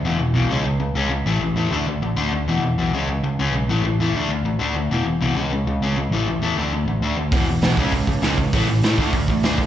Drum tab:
HH |--------|--------|--------|--------|
SD |--------|--------|--------|--------|
BD |--------|--------|--------|--------|

HH |--------|--------|o-o-o-o-|o-o-o-o-|
SD |--------|--------|--o---o-|--o---o-|
BD |--------|--------|o--ooo-o|o--ooo-o|